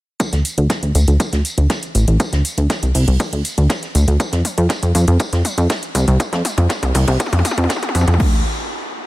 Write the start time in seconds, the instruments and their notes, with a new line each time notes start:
0.20 kick, closed hi-hat, mid tom, tambourine
0.32 analog synth bass D2, snare, closed hi-hat
0.45 open hi-hat, tambourine
0.58 analog synth bass D2, closed hi-hat
0.70 kick, snare, closed hi-hat, mid tom, tambourine
0.83 analog synth bass D2, closed hi-hat
0.95 analog synth bass D2, open hi-hat, tambourine
1.08 analog synth bass D2, closed hi-hat
1.20 kick, closed hi-hat, mid tom, tambourine
1.33 analog synth bass D2, snare, closed hi-hat
1.45 open hi-hat, tambourine
1.58 analog synth bass D2, closed hi-hat
1.70 kick, snare, closed hi-hat, mid tom, tambourine
1.83 closed hi-hat
1.95 analog synth bass A1, open hi-hat, tambourine
2.08 analog synth bass A1, closed hi-hat
2.20 kick, closed hi-hat, mid tom, tambourine
2.33 analog synth bass D2, snare, closed hi-hat
2.45 open hi-hat, tambourine
2.58 analog synth bass D2, closed hi-hat
2.70 kick, snare, closed hi-hat, mid tom, tambourine
2.83 analog synth bass C2, closed hi-hat
2.95 analog synth bass C2, open hi-hat
3.08 analog synth bass C2, closed hi-hat
3.20 kick, closed hi-hat, mid tom, tambourine
3.33 analog synth bass D2, closed hi-hat
3.45 open hi-hat, tambourine
3.58 analog synth bass D2, closed hi-hat
3.70 kick, snare, closed hi-hat, mid tom, tambourine
3.83 snare, closed hi-hat
3.95 analog synth bass D2, open hi-hat, tambourine
4.08 analog synth bass D2, closed hi-hat
4.20 kick, closed hi-hat, mid tom, tambourine
4.32 analog synth bass F2, snare, closed hi-hat
4.45 open hi-hat, mid tom, tambourine
4.58 analog synth bass F2, closed hi-hat
4.69 kick, snare, closed hi-hat, mid tom, tambourine
4.83 analog synth bass F2, closed hi-hat
4.95 analog synth bass F2, open hi-hat, mid tom, tambourine
5.08 analog synth bass F2, closed hi-hat
5.19 kick, closed hi-hat, mid tom, tambourine
5.33 analog synth bass F2, snare, closed hi-hat
5.45 open hi-hat, mid tom, tambourine
5.58 analog synth bass F2, closed hi-hat
5.70 kick, snare, closed hi-hat, mid tom, tambourine
5.83 closed hi-hat
5.95 analog synth bass C2, open hi-hat, mid tom, tambourine
6.08 analog synth bass C2, closed hi-hat
6.20 kick, closed hi-hat, mid tom, tambourine
6.33 analog synth bass F2, snare, closed hi-hat, mid tom
6.45 open hi-hat, mid tom, tambourine
6.58 analog synth bass F2, closed hi-hat, mid tom
6.69 kick, snare, closed hi-hat, mid tom, tambourine
6.83 analog synth bass C2, closed hi-hat, mid tom
6.95 analog synth bass C2, open hi-hat, mid tom
7.08 analog synth bass C2, closed hi-hat, mid tom
7.20 kick, closed hi-hat, mid tom, tambourine
7.26 mid tom
7.33 analog synth bass F2, closed hi-hat, mid tom
7.39 mid tom
7.45 open hi-hat, mid tom, tambourine
7.51 mid tom
7.58 analog synth bass F2, closed hi-hat, mid tom
7.64 mid tom
7.69 kick, snare, closed hi-hat, mid tom, tambourine
7.76 mid tom
7.82 snare, closed hi-hat, mid tom
7.89 mid tom
7.95 analog synth bass F2, open hi-hat, mid tom, tambourine
8.01 mid tom
8.08 analog synth bass F2, closed hi-hat, mid tom
8.14 mid tom
8.20 analog synth bass D2, kick, crash